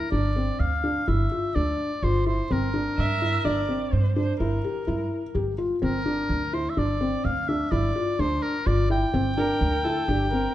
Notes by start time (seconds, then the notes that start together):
0.11 G1 D4 D5
0.36 C4
0.60 D2 F5
0.84 D4
1.08 G1 E4 E5
1.31 F4
1.55 D2 D4 D5
2.02 G1 F4 C5
2.26 E4 C5
2.50 G1 C4 A#4
2.74 D4
2.97 G2 E5
3.22 E4
3.44 G1 D4 D5
3.69 C4
3.92 G2 C5
4.16 D4 C5
4.40 G1 E4 A#4
4.64 G4
4.87 G2 E4
5.35 G1 G4
5.58 F4
5.82 G1 C4 A#4
6.06 D4
6.29 D2
6.53 E4 C5
6.70 E5
6.77 G1 D4 D5
7.01 C4
7.25 D2 F5
7.48 D4 E5
7.71 G1 E4 D5
7.95 F4
8.19 D2 D4 C5
8.42 A#4
8.66 G1 F4 D5
8.90 E4 G5
9.14 G1 C4
9.37 D4 A#4
9.61 D2
9.84 E4 A4
10.08 G1 D4 G4
10.31 C4 A#4